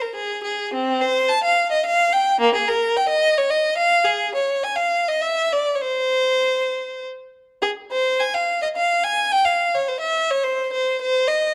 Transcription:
0.01 0.15 A#4 medium
0.15 0.42 G#4 medium
0.43 0.72 G#4 medium
0.73 1.01 C4 medium
1.01 1.29 C5 medium
1.28 1.43 A5 medium
1.43 1.70 F5 medium
1.71 1.85 D#5 medium
1.86 2.12 F5 medium
2.13 2.40 G5 medium
2.40 2.54 A#3 medium
2.55 2.68 G#4 medium
2.68 2.96 A#4 medium
2.96 3.10 G5 medium
3.09 3.37 D#5 medium
3.38 3.52 C#5 medium
3.50 3.79 D#5 medium
3.77 4.06 F5 medium
4.04 4.34 G#4 medium
4.35 4.63 C#5 medium
4.63 4.78 G#5 medium
4.76 5.06 F5 medium
5.08 5.22 D#5 medium
5.21 5.51 E5 medium
5.52 5.75 D5 medium
5.75 5.83 C#5 soft
5.81 7.03 C5 medium
7.62 7.70 G#4 medium
7.91 8.20 C5 medium
8.19 8.34 G#5 medium
8.34 8.62 F5 medium
8.62 8.68 D#5 medium
8.76 9.04 F5 medium
9.03 9.32 G#5 medium
9.32 9.46 G5 medium
9.45 9.74 F5 medium
9.75 9.89 C#5 medium
9.88 10.03 C5 medium
10.00 10.30 E5 medium
10.30 10.45 C#5 medium
10.44 10.71 C5 medium
10.72 11.00 C5 medium
11.01 11.29 C5 medium
11.27 11.54 D#5 medium

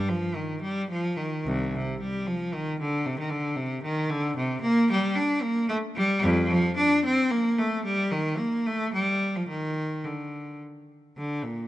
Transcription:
0.08 0.35 F3 medium
0.35 0.61 D#3 medium
0.62 0.88 G3 medium
0.90 1.16 F3 medium
1.17 1.44 D#3 medium
1.45 1.72 C2 medium
1.75 2.00 C3 medium
2.01 2.26 G3 medium
2.26 2.53 F3 medium
2.54 2.80 D#3 medium
2.80 3.06 D3 medium
3.06 3.19 C3 loud
3.19 3.32 D#3 medium
3.30 3.57 D3 medium
3.56 3.83 C3 medium
3.83 4.10 D#3 medium
4.10 4.37 D3 loud
4.37 4.63 C3 medium
4.61 4.88 A#3 loud
4.91 5.16 G3 loud
5.15 5.42 D4 medium
5.42 5.68 A#3 loud
5.68 5.76 A3 loud
5.96 6.22 G3 loud
6.22 6.49 F2 loud
6.50 6.76 F3 loud
6.76 7.03 D4 loud
7.05 7.30 C4 loud
7.31 7.57 A#3 loud
7.58 7.84 A3 loud
7.85 8.10 G3 loud
8.11 8.37 D#3 loud
8.37 8.64 A#3 medium
8.66 8.92 A3 medium
8.93 9.33 G3 medium
9.35 9.48 F3 medium
9.49 10.03 D#3 medium
10.04 10.60 D3 medium
11.18 11.42 D3 medium
11.44 11.68 A#2 medium

